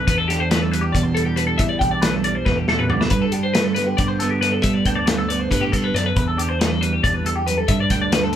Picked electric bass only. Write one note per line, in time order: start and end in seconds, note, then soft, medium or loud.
0.08 0.91 E2 loud
0.94 1.56 E2 medium
1.59 1.80 E3 loud
1.81 2.42 B1 loud
2.46 2.67 E2 loud
2.68 2.88 E2 medium
2.90 3.10 D2 medium
3.10 3.94 G2 loud
3.99 4.60 G2 medium
4.63 4.84 G3 loud
4.85 5.46 D2 loud
5.51 5.71 G2 loud
5.73 5.93 G2 medium
5.94 6.14 F#2 medium
6.16 6.99 E2 loud
7.04 7.64 E2 medium
7.69 7.88 G2 loud
7.90 8.36 D2 medium